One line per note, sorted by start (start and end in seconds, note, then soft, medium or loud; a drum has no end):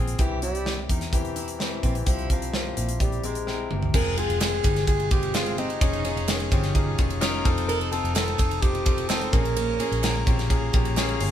0.00 0.17 A#1 medium
0.00 0.21 C3 medium
0.00 0.19 C4 loud
0.00 0.21 F4 loud
0.00 0.19 G4 medium
0.00 0.21 G#4 loud
0.00 0.21 A#4 medium
0.07 closed hi-hat soft
0.19 0.86 C2 medium
0.19 0.85 G2 medium
0.19 0.41 E3 medium
0.19 0.38 C4 medium
0.19 0.38 E4 medium
0.19 0.38 G4 medium
0.19 0.41 G4 medium
0.19 kick medium
0.19 closed hi-hat medium
0.42 0.86 G3 loud
0.42 0.61 C4 medium
0.42 0.61 E4 medium
0.42 0.75 E4 medium
0.42 0.61 G4 medium
0.42 closed hi-hat medium
0.55 closed hi-hat soft
0.66 0.84 C4 medium
0.66 0.84 E4 medium
0.66 0.85 G4 medium
0.66 snare medium
0.89 1.79 E2 medium
0.89 1.08 C4 medium
0.89 1.00 D#4 medium
0.89 1.08 E4 medium
0.89 1.08 A#4 medium
0.89 kick medium
0.89 closed hi-hat medium
1.01 snare soft
1.01 closed hi-hat soft
1.13 1.57 E3 medium
1.13 1.31 C4 medium
1.13 1.31 E4 medium
1.13 1.31 G4 loud
1.13 kick medium
1.13 closed hi-hat medium
1.25 closed hi-hat soft
1.36 1.55 C4 medium
1.36 1.55 E4 medium
1.36 1.47 E4 medium
1.36 1.55 A#4 medium
1.36 closed hi-hat medium
1.48 closed hi-hat soft
1.59 1.82 E3 medium
1.59 1.78 C4 medium
1.59 1.78 E4 medium
1.59 1.71 E4 medium
1.59 1.78 G4 loud
1.59 snare medium
1.83 2.05 A#1 medium
1.83 2.10 E3 medium
1.83 2.01 C4 medium
1.83 1.94 C4 medium
1.83 2.02 E4 medium
1.83 2.02 G4 medium
1.83 kick medium
1.83 closed hi-hat medium
1.95 closed hi-hat soft
2.06 2.73 C2 medium
2.06 2.73 G2 medium
2.06 2.31 F3 medium
2.06 2.25 C4 medium
2.06 2.25 E4 medium
2.06 2.29 E4 medium
2.06 2.25 G4 medium
2.06 kick medium
2.06 closed hi-hat medium
2.18 closed hi-hat soft
2.30 2.52 F3 medium
2.30 2.48 C4 medium
2.30 2.63 C4 medium
2.30 2.48 E4 medium
2.30 2.49 A#4 medium
2.30 kick medium
2.30 closed hi-hat medium
2.42 closed hi-hat soft
2.53 3.03 F3 medium
2.53 2.72 C4 medium
2.53 2.72 E4 medium
2.53 2.72 G4 medium
2.53 snare medium
2.77 3.67 A#1 medium
2.77 2.88 A#3 medium
2.77 2.95 C4 medium
2.77 2.95 E4 medium
2.77 2.95 G4 medium
2.77 closed hi-hat medium
2.89 closed hi-hat medium
3.00 3.26 G3 medium
3.00 3.19 C4 medium
3.00 3.19 E4 medium
3.00 3.19 G4 medium
3.00 kick medium
3.00 closed hi-hat medium
3.12 closed hi-hat soft
3.24 3.71 G#3 medium
3.24 3.42 C4 medium
3.24 3.35 C4 medium
3.24 3.42 E4 medium
3.24 3.42 A#4 medium
3.24 closed hi-hat medium
3.35 closed hi-hat soft
3.47 3.66 C4 medium
3.47 3.66 E4 medium
3.47 3.66 A#4 loud
3.47 snare soft
3.70 3.93 G1 medium
3.70 3.89 C4 medium
3.70 3.89 E4 medium
3.70 3.89 G4 medium
3.70 mid tom medium
3.83 floor tom medium
3.94 4.27 F1 loud
3.94 4.60 C3 medium
3.94 4.12 G#3 loud
3.94 4.13 C4 medium
3.94 4.13 F4 medium
3.94 4.16 G#4 medium
3.94 5.80 G#4 medium
3.94 4.13 G#4 loud
3.94 4.16 A#4 loud
3.94 5.80 F5 medium
3.94 5.80 C6 medium
3.94 kick loud
3.94 crash medium
4.17 4.36 G#3 loud
4.17 4.36 C4 medium
4.17 4.50 F4 medium
4.17 4.36 F4 medium
4.17 4.36 G#4 loud
4.17 4.40 G#4 loud
4.17 ride medium
4.29 4.62 F1 medium
4.29 ride soft
4.40 4.59 G#3 medium
4.40 4.59 C4 medium
4.40 4.59 F4 medium
4.40 4.59 G#4 medium
4.40 4.85 G#4 loud
4.40 snare loud
4.40 clap medium
4.40 ride medium
4.64 5.77 G1 medium
4.64 4.83 G#3 medium
4.64 4.83 C4 medium
4.64 4.75 D#4 medium
4.64 4.83 F4 medium
4.64 4.83 G4 medium
4.64 kick medium
4.64 clap medium
4.64 ride medium
4.76 snare soft
4.76 ride soft
4.87 5.06 G#3 medium
4.87 5.06 C4 medium
4.87 5.06 F4 medium
4.87 5.13 G#4 loud
4.87 5.06 G#4 medium
4.87 kick medium
4.87 ride medium
5.00 ride soft
5.11 5.30 G#3 medium
5.11 5.30 C4 medium
5.11 5.22 F4 medium
5.11 5.30 F4 medium
5.11 5.37 G4 medium
5.11 5.30 G#4 medium
5.11 kick loud
5.11 ride medium
5.23 ride soft
5.34 5.53 G#3 loud
5.34 5.53 C4 medium
5.34 5.46 F4 medium
5.34 5.53 F4 medium
5.34 5.60 F4 medium
5.34 5.53 G#4 loud
5.34 snare loud
5.34 clap loud
5.34 ride medium
5.46 ride soft
5.58 5.76 G#3 medium
5.58 5.76 C4 medium
5.58 5.69 C4 medium
5.58 6.52 D#4 medium
5.58 5.76 F4 medium
5.58 5.76 G4 medium
5.58 ride medium
5.70 ride soft
5.81 6.14 F1 loud
5.81 6.48 F3 medium
5.81 6.00 C#4 loud
5.81 6.03 D#4 loud
5.81 6.00 D#4 loud
5.81 6.00 F4 medium
5.81 9.29 F4 medium
5.81 6.00 G#4 loud
5.81 9.30 D#5 medium
5.81 7.44 C#6 medium
5.81 kick loud
5.81 ride medium
5.93 ride soft
6.05 6.38 C#4 medium
6.05 6.23 C#4 medium
6.05 6.23 D#4 medium
6.05 6.23 F4 medium
6.05 6.23 G#4 loud
6.05 ride medium
6.16 6.49 F1 loud
6.16 ride soft
6.28 6.47 C#4 medium
6.28 6.47 D#4 medium
6.28 6.47 F4 medium
6.28 6.47 G#4 loud
6.28 snare loud
6.28 clap medium
6.28 ride medium
6.40 ride soft
6.51 6.95 G1 loud
6.51 6.63 C4 medium
6.51 6.70 C#4 medium
6.51 6.70 D#4 medium
6.51 6.70 F4 medium
6.51 6.70 G4 loud
6.51 kick loud
6.51 ride medium
6.63 snare soft
6.63 ride soft
6.75 6.94 C#4 medium
6.75 6.94 D#4 medium
6.75 6.94 F4 medium
6.75 6.94 G#4 loud
6.75 kick medium
6.75 ride medium
6.98 7.42 F1 loud
6.98 7.17 C#4 medium
6.98 7.10 C#4 medium
6.98 7.17 D#4 medium
6.98 7.17 F4 medium
6.98 7.17 G#4 medium
6.98 kick medium
6.98 ride medium
7.10 ride soft
7.21 7.40 C#4 loud
7.21 7.40 D#4 loud
7.21 7.40 F4 loud
7.21 7.40 A#4 loud
7.21 snare loud
7.21 clap medium
7.21 ride medium
7.45 8.00 F1 loud
7.45 8.11 C3 medium
7.45 7.83 C4 loud
7.45 7.83 D#4 loud
7.45 7.83 F4 medium
7.45 7.83 A4 loud
7.45 9.31 A5 medium
7.45 kick loud
7.45 ride medium
7.58 ride soft
7.68 7.91 A4 loud
7.68 7.79 A#4 loud
7.68 ride medium
7.81 ride soft
7.92 8.10 C4 medium
7.92 8.11 D#4 medium
7.92 8.11 F4 medium
7.92 8.25 F4 medium
7.92 8.11 A4 loud
7.92 8.14 A4 loud
7.92 ride medium
8.04 8.37 F1 loud
8.04 ride soft
8.15 8.34 C4 medium
8.15 8.34 D#4 medium
8.15 8.34 F4 medium
8.15 8.34 A4 medium
8.15 8.63 A4 loud
8.15 snare loud
8.15 clap loud
8.15 ride medium
8.28 ride soft
8.38 9.29 F1 medium
8.38 8.57 C4 medium
8.38 8.57 D#4 medium
8.38 8.50 D#4 medium
8.38 8.57 F4 medium
8.38 8.57 A4 medium
8.38 kick loud
8.38 clap medium
8.38 ride medium
8.51 ride soft
8.62 8.81 C4 medium
8.62 8.81 D#4 medium
8.62 8.81 F4 medium
8.62 9.10 G4 loud
8.62 8.81 C5 medium
8.62 kick loud
8.62 ride medium
8.75 ride soft
8.85 9.04 C4 medium
8.85 9.04 D#4 medium
8.85 9.04 F4 medium
8.85 8.97 F4 medium
8.85 9.04 A4 medium
8.85 kick loud
8.85 ride medium
8.98 ride soft
9.08 9.28 C4 loud
9.08 9.28 D#4 medium
9.08 9.28 F4 medium
9.08 9.21 F4 medium
9.08 9.34 A4 medium
9.08 9.28 C5 loud
9.08 snare loud
9.08 clap loud
9.08 ride medium
9.21 ride soft
9.32 9.77 A#1 loud
9.32 9.99 A#2 medium
9.32 9.99 F3 medium
9.32 9.70 A#3 medium
9.32 9.70 C#4 medium
9.32 9.44 C#4 medium
9.32 9.70 F4 medium
9.32 11.31 G#4 medium
9.32 9.70 G#4 medium
9.32 10.27 A#4 loud
9.32 11.31 C#5 medium
9.32 11.31 A#5 medium
9.32 kick loud
9.32 ride soft
9.45 ride soft
9.57 9.79 A#3 loud
9.57 ride medium
9.79 9.98 A#3 medium
9.79 9.98 C#4 loud
9.79 10.13 C#4 medium
9.79 9.98 F4 medium
9.79 9.98 G#4 loud
9.79 ride medium
9.92 10.24 A#1 loud
9.92 ride soft
10.03 10.22 A#3 medium
10.03 10.22 C#4 medium
10.03 10.22 F4 medium
10.03 10.22 A#4 loud
10.03 snare loud
10.03 clap medium
10.03 ride medium
10.26 10.70 A#1 medium
10.26 10.45 A#3 medium
10.26 10.38 C4 medium
10.26 10.45 C#4 medium
10.26 10.45 F4 medium
10.26 10.45 G4 medium
10.26 kick loud
10.26 ride medium
10.39 snare soft
10.39 ride soft
10.50 10.69 A#3 medium
10.50 10.69 C#4 medium
10.50 10.69 F4 medium
10.50 10.69 G#4 loud
10.50 kick medium
10.50 ride medium
10.73 11.17 A#1 medium
10.73 10.85 A#3 medium
10.73 10.92 A#3 medium
10.73 10.92 C#4 medium
10.73 10.93 F4 medium
10.73 10.93 G4 medium
10.73 10.96 A#5 medium
10.73 kick loud
10.73 ride medium
10.85 ride soft
10.97 11.16 A#3 loud
10.97 11.16 C#4 loud
10.97 11.16 F4 loud
10.97 11.16 G#4 loud
10.97 11.19 G#5 medium
10.97 snare loud
10.97 clap medium
10.97 ride medium
11.09 ride soft
11.20 11.31 G1 medium
11.20 11.31 A#3 medium
11.20 11.31 C#4 loud
11.20 11.31 F4 medium
11.20 11.31 G#4 loud
11.20 11.31 F5 medium
11.20 open hi-hat medium
11.20 ride medium